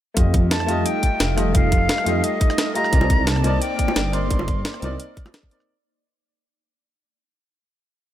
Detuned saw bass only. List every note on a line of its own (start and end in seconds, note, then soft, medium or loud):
0.17 0.67 F2 loud
0.69 0.84 F2 medium
1.20 1.88 F1 medium
2.06 2.22 F2 medium
2.93 3.43 C2 loud
3.44 3.60 C2 medium
3.96 4.64 G1 medium
4.82 4.98 C2 medium